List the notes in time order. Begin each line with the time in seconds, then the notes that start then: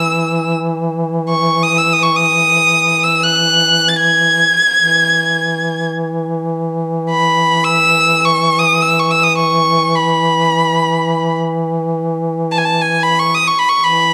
Already playing: E3 E6
1.30 C#6
1.63 D#6
1.78 E6
1.93 D#6
2.03 C#6
2.16 D#6
3.03 E6
3.23 F#6
3.88 A6
3.95 G#6
4.80 E3
7.10 B5
7.64 E6
8.25 C#6
8.59 D#6
8.82 E6
8.99 C#6
9.11 E6
9.24 D#6
9.38 C#6
9.95 B5
12.52 A5
12.58 G#5
12.65 A5
12.81 G#5
13.03 B5
13.19 C#6
13.35 D#6
13.47 C#6
13.59 B5
13.69 C#6
13.80 E3 B5